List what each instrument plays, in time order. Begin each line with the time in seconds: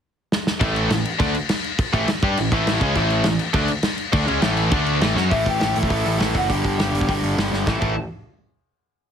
0.32 snare
0.47 snare
0.61 picked electric bass A1, overdriven electric guitar A2 E3 A3, kick, crash
0.76 crash
0.90 picked electric bass A1, overdriven electric guitar A2 E3, snare, crash
1.05 crash
1.19 picked electric bass D2, overdriven electric guitar D3 A3 D4, kick, crash
1.34 crash
1.49 snare, crash
1.64 crash
1.79 kick, crash
1.93 picked electric bass A1, overdriven electric guitar A2 E3 A3, kick, crash
2.08 muted picked electric bass stroke, muted overdriven electric guitar stroke, muted distorted electric guitar stroke, snare, crash
2.22 picked electric bass G2, overdriven electric guitar G3 D4 G4, kick, crash
2.37 picked electric bass A1, overdriven electric guitar A2 E3, crash
2.52 picked electric bass A1, overdriven electric guitar A2 E3 A3, kick, crash
2.67 snare, crash
2.81 picked electric bass C#2, overdriven electric guitar C#3 G#3 C#4, kick, crash
2.95 picked electric bass A1, overdriven electric guitar A2 E3 A3, kick, crash
3.10 crash
3.24 picked electric bass A1, overdriven electric guitar A2 E3, snare, crash
3.39 crash
3.53 picked electric bass D2, overdriven electric guitar D3 A3 D4, kick, crash
3.68 crash
3.83 snare, crash
3.98 crash
4.13 picked electric bass D2, overdriven electric guitar D3 A3 D4, kick, crash
4.26 picked electric bass C#2, overdriven electric guitar C#3 G#3 C#4, crash
4.42 picked electric bass A1, overdriven electric guitar A2 E3 A3, snare, crash
4.57 crash
4.71 picked electric bass D2, overdriven electric guitar D3 A3 D4, kick, crash
4.86 crash
5.01 picked electric bass A1, overdriven electric guitar A2 E3 A3, snare, crash
5.15 picked electric bass F#2, overdriven electric guitar F#3 C#4 F#4, snare
5.30 picked electric bass A1, overdriven electric guitar A2 E3 A3, lead electric guitar E4 E5, kick, open hi-hat
5.46 picked electric bass A1, lead electric guitar G4 G5, kick, open hi-hat
5.59 picked electric bass A1, overdriven electric guitar A2 E3 A3, snare, open hi-hat
5.76 picked electric bass A1, lead electric guitar A4 A5, open hi-hat
5.83 kick
5.88 picked electric bass A1, overdriven electric guitar A2 E3 A3, kick, open hi-hat
6.06 picked electric bass A1, lead electric guitar A4 A5, open hi-hat
6.18 picked electric bass A1, overdriven electric guitar A2 E3 A3, snare, open hi-hat
6.35 picked electric bass F#1, lead electric guitar F#4 F#5, kick, open hi-hat
6.49 picked electric bass G1, overdriven electric guitar G2 D3 G3, lead electric guitar G4, kick, open hi-hat
6.53 lead electric guitar G5
6.65 picked electric bass G1, kick, open hi-hat
6.79 picked electric bass G1, overdriven electric guitar G2 D3 G3, snare, open hi-hat
6.93 picked electric bass G1, open hi-hat
7.01 kick
7.08 picked electric bass G1, overdriven electric guitar G2 D3 G3, kick, open hi-hat
7.23 picked electric bass G1, open hi-hat
7.37 picked electric bass G1, overdriven electric guitar G2 D3 G3, snare, open hi-hat
7.52 picked electric bass G1, snare
7.67 picked electric bass A1, overdriven electric guitar A2 E3 A3, lead electric guitar A5, kick, snare
7.79 picked electric bass A1, overdriven electric guitar A2 E3 A3, lead electric guitar A5, kick, crash